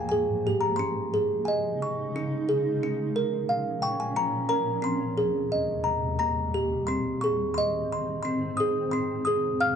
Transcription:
Already playing: G#2 F3 A#3 G#4 F5
0.09 G#4 G#5
0.47 G4
0.61 A#5
0.76 C#3 G#3 C#4 D#4 C6
1.14 G#4
1.45 D#5 G#5
1.82 C#6
2.16 C#4
2.49 G#4
2.82 A#2 F3 C#4
3.16 A#4
3.49 F5
3.82 G5 C#6
4.00 G#5
4.16 C#4 A#5
4.49 A#4 A#5
4.82 D#2 C4 C6
5.18 G#4
5.52 D#5
5.84 A#5
6.19 A#3 A#5
6.54 G4
6.87 G#2 D#3 C4 C6
7.21 G#4 C#6
7.54 D#5 C6
7.92 C6
8.23 C4 C6
8.57 G#4 D#6
8.91 F2 C3 G#3 C4 C6
9.25 G#4 D#6
9.60 F5 F6

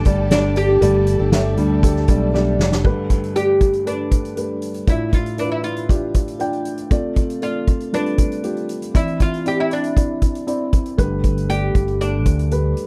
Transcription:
Already playing: G2 D3 A3 D4 G4 A4 D5 A5
0.05 G1 G3 A3 D4 G4 A4 D5, kick, closed hi-hat
0.30 G3 A3 D4 G4 A4 D5, snare, closed hi-hat
0.56 G4, closed hi-hat
0.68 D4 G4 A4
0.81 G1 G2 D3 G3 A3 D4 G4 A4 D5, closed hi-hat
1.07 closed hi-hat
1.19 G1 D4 G4 A4
1.32 A3 G4 E5, snare, closed hi-hat
1.57 D2 G3 D4 G4 A4, closed hi-hat
1.83 A3 G4 A4, kick, closed hi-hat
1.96 snare
2.08 B1 G3 A3 D4 G4 A4 D5, kick, closed hi-hat
2.33 G3 A3 D4 G4 A4 D5, snare
2.59 F1, snare
2.71 D4 G4 A4, snare
2.84 G2 D3 A3 G4 B4, kick, crash
3.10 kick, closed hi-hat
3.24 closed hi-hat
3.35 A3 G4 D5, closed hi-hat
3.61 kick, closed hi-hat
3.73 closed hi-hat
3.86 A3 D4 G4 B4, closed hi-hat
4.11 kick, closed hi-hat
4.25 closed hi-hat
4.36 A3 G4 B4, closed hi-hat
4.62 closed hi-hat
4.74 closed hi-hat
4.87 A2 D4 E4 F4 E5, kick, closed hi-hat
5.13 F4, kick, closed hi-hat
5.26 closed hi-hat
5.38 D4 E4 B4, closed hi-hat
5.45 F4
5.52 E4
5.64 F4, closed hi-hat
5.77 closed hi-hat
5.89 D4 F4 G4, kick, closed hi-hat
6.14 kick, closed hi-hat
6.28 closed hi-hat
6.40 D4 F4 G5, closed hi-hat
6.53 closed hi-hat
6.65 closed hi-hat
6.78 closed hi-hat
6.91 C3 A3 F4 D5, kick, closed hi-hat
7.16 kick, closed hi-hat
7.30 closed hi-hat
7.42 A3 F4 D5, closed hi-hat
7.67 kick, closed hi-hat
7.80 closed hi-hat
7.93 G3 D4 F4 B4, closed hi-hat
7.99 A3
8.06 closed hi-hat
8.18 kick, closed hi-hat
8.32 closed hi-hat
8.43 A3 F4 G4, closed hi-hat
8.57 closed hi-hat
8.69 closed hi-hat
8.82 closed hi-hat
8.94 E3 C4 E4 D5, kick, closed hi-hat
9.08 closed hi-hat
9.20 F4, kick, closed hi-hat
9.34 closed hi-hat
9.45 C4 E4 G4 D5, closed hi-hat
9.60 E4
9.71 D4, closed hi-hat
9.84 closed hi-hat
9.96 C4 E4 D5, kick, closed hi-hat
10.22 kick, closed hi-hat
10.35 closed hi-hat
10.47 C4 E4 D5, closed hi-hat
10.73 kick, closed hi-hat
10.86 closed hi-hat
10.98 G1 G2 D3 A3 G4 B4, kick, closed hi-hat
11.24 kick, closed hi-hat
11.38 closed hi-hat
11.49 A3 G4 D5, closed hi-hat
11.75 G1, kick, closed hi-hat
11.88 closed hi-hat
12.00 A3 D4 G4 D5, closed hi-hat
12.26 D2, kick, closed hi-hat
12.39 closed hi-hat
12.51 A3 G4 B4, closed hi-hat
12.77 closed hi-hat

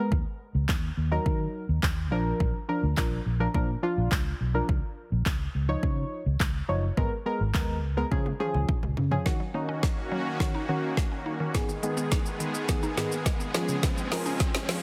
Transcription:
Already playing: G#3 B3 A#4
0.12 D#2, kick
0.55 C#2
0.69 kick, clap
0.97 D#2
1.11 F#3 D#4 A#4
1.26 D#3, kick
1.69 D#2
1.83 D#2, kick, clap
2.11 A#1 F3 D4 A#4
2.40 A#1, kick
2.68 F3 D4 A#4
2.83 D2
2.97 A#1 F3 D4 A#4, kick, clap
3.26 A#1
3.40 F3 D4 A#4
3.54 A#2 F3 D4 A#4, kick
3.83 F3 D4 F4
3.98 A#1
4.12 C#2, kick, clap
4.40 B1
4.54 F3 D4 A#4
4.69 C#2, kick
5.12 A#1
5.26 kick, clap
5.55 C#2
5.68 F3 D#4 C#5
5.83 C#3, kick
6.26 C#2
6.40 kick, clap
6.69 F#1 F3 D#4 C#5
6.97 G#1 G#3 B3 A#4, kick
7.26 G#3 B3 A#4
7.40 G#1
7.54 D#2 G#3 B3 A#4, kick, clap
7.83 C#2
7.97 G#3 B3 A#4
8.11 C#3 F3 C#4 G#4, kick, high tom
8.26 high tom
8.39 F3 C#4 G#4, mid tom
8.54 C#2, mid tom
8.69 kick, mid tom
8.83 C#2, mid tom
8.97 C#3, floor tom
9.11 F3 C#4 G#4, floor tom
9.25 D#3 A#3 C#4 F#4, kick, snare, riser
9.40 F#3
9.54 D#3 A#3 C#4 D#4
9.69 C#4
9.83 D#4, kick, snare
10.12 F#3
10.40 D#3 C#4 F#4, kick, snare
10.55 D#4
10.68 D#3 C#4 F#4
10.97 A#3, kick, snare
11.12 C#4
11.26 D#4
11.40 D#3
11.54 G#2 D#3 G#3 B3 G#4, kick, snare, closed hi-hat, shaker
11.69 D#3, shaker
11.83 D#3 G#3 B3 G#4, closed hi-hat, shaker
11.97 B3, shaker
12.11 D#4, kick, snare, closed hi-hat, shaker
12.26 shaker
12.40 D#3, closed hi-hat, shaker
12.54 shaker
12.68 D#3 B3 G#4, kick, snare, closed hi-hat, shaker
12.83 D#4, shaker
12.97 G#2 D#3 B3 G#4, snare, closed hi-hat, shaker
13.12 shaker
13.26 G#3, kick, snare, closed hi-hat, shaker
13.40 B3, shaker
13.54 F3 C#4 F4 G#4, snare, closed hi-hat, shaker
13.69 C#3, shaker
13.83 C#3, kick, snare, closed hi-hat, shaker
13.97 F3, shaker
14.11 F3 G#3 C#4 A#4, snare, open hi-hat, shaker
14.26 C#4, shaker
14.40 F4, kick, snare, closed hi-hat, shaker
14.54 snare, shaker
14.69 F3, snare, open hi-hat, shaker

